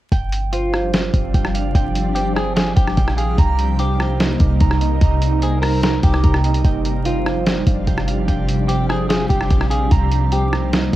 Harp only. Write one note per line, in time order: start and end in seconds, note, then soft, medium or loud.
0.12 1.34 G5 loud
0.53 2.15 C5 loud
0.73 2.36 G4 medium
0.93 2.56 F4 medium
1.34 1.74 G5 loud
1.54 3.17 F5 loud
1.75 2.97 G5 loud
2.15 3.79 C5 medium
2.36 4.71 G4 medium
2.56 5.09 F4 medium
2.97 4.52 G5 loud
3.18 4.84 F5 loud
3.38 4.60 A#5 loud
3.80 5.42 C5 loud
4.00 5.63 A#4 medium
4.20 5.83 D#4 loud
4.61 5.01 A#5 loud
4.81 6.45 D#5 medium
5.01 6.23 A#5 loud
5.42 7.05 C5 loud
5.63 7.75 A#4 medium
5.83 8.53 D#4 medium
6.24 7.64 A#5 loud
6.45 8.24 D#5 medium
6.65 7.87 G5 loud
7.06 8.68 C5 loud
7.26 8.89 G4 medium
7.46 9.09 F4 medium
7.87 8.27 G5 loud
8.07 9.70 F5 loud
8.28 9.50 G5 loud
8.68 10.32 C5 medium
8.89 10.96 G4 medium
9.09 10.96 F4 medium
9.50 10.96 G5 loud
9.71 10.96 F5 loud
9.91 10.96 A#5 loud
10.33 10.96 C5 medium
10.53 10.96 A#4 medium
10.73 10.96 D#4 medium